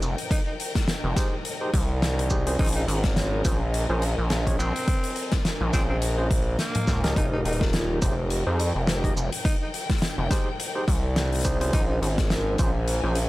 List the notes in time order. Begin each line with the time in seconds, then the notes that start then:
Already playing: A#4 D#5 G5
0.02 F1, shaker
0.18 closed hi-hat
0.31 D#4, kick, closed hi-hat
0.47 D#4
0.60 closed hi-hat
0.75 kick, snare, closed hi-hat
0.88 snare, closed hi-hat
1.04 F1
1.16 D#4 G4 G#4 C5, kick, snare, closed hi-hat, shaker
1.45 closed hi-hat
1.61 D#4 G4 G#4 C5
1.74 C2, kick, closed hi-hat
2.02 snare, closed hi-hat
2.19 closed hi-hat
2.30 D#4 G4 G#4 C5, kick, shaker
2.47 C#4 F4 G#4 C5, closed hi-hat
2.59 A#1 D#4, kick, closed hi-hat
2.62 closed hi-hat
2.65 closed hi-hat
2.67 closed hi-hat
2.73 D#4, closed hi-hat
2.88 G#1, closed hi-hat
3.04 kick, snare, closed hi-hat
3.16 snare, closed hi-hat
3.24 G#5
3.45 A#1 C#4 F4 G#4 C5, kick, closed hi-hat, shaker
3.74 closed hi-hat
3.89 A#1 C#4 F4 G#4 C5
4.02 closed hi-hat
4.18 A#1
4.30 snare, closed hi-hat
4.47 C#4 F4 G#4 C#5, kick, closed hi-hat
4.59 A#1 C4, shaker
4.76 closed hi-hat
4.88 kick, closed hi-hat
5.04 closed hi-hat
5.16 closed hi-hat
5.32 kick, snare, closed hi-hat
5.45 snare, closed hi-hat
5.61 A#1
5.73 A#1 C4 C#4 F4 G#4 C5, kick, snare, closed hi-hat, shaker
5.90 C4
6.02 closed hi-hat
6.18 C#4 F4 G#4 C5
6.31 kick, closed hi-hat
6.59 A#3, snare, closed hi-hat
6.75 closed hi-hat, high tom
6.87 C#2, kick, snare, shaker
7.04 D#4 G4 G#4 A#4, snare, closed hi-hat
7.16 F1 D#4, kick, closed hi-hat
7.33 D#4
7.45 D#1 D#4, closed hi-hat
7.53 closed hi-hat
7.61 kick, snare
7.73 snare, closed hi-hat
7.90 G5
8.02 F1 D#4 G4 G#4 C5, kick, closed hi-hat, shaker
8.30 closed hi-hat
8.47 F2 D#4 G4 G#4 C5
8.60 closed hi-hat
8.75 F1
8.87 snare, closed hi-hat
9.04 D#4 G4 G#4 D#5, kick, closed hi-hat
9.16 F1, shaker
9.33 closed hi-hat
9.45 D#4, kick, closed hi-hat
9.61 D#4
9.74 closed hi-hat
9.90 kick, snare, closed hi-hat
9.98 snare, closed hi-hat
10.02 closed hi-hat
10.07 closed hi-hat
10.18 F1
10.31 D#4 G4 G#4 C5, kick, snare, closed hi-hat, shaker
10.60 closed hi-hat
10.75 D#4 G4 G#4 C5
10.88 C2, kick, closed hi-hat
11.16 snare, closed hi-hat
11.32 closed hi-hat
11.35 closed hi-hat
11.39 closed hi-hat
11.41 closed hi-hat
11.43 D#4 G4 G#4 C5, kick, closed hi-hat, shaker
11.61 C#4 F4 G#4 C5, closed hi-hat
11.73 A#1 D#4 A#4, kick, closed hi-hat
11.90 D#4
12.01 G#1 G#5, closed hi-hat
12.18 kick, snare, closed hi-hat
12.30 snare, closed hi-hat
12.58 A#1 C#4 F4 G#4 C5, kick, closed hi-hat, shaker
12.88 closed hi-hat
13.04 A#1 C#4 F4 G#4 C5
13.15 closed hi-hat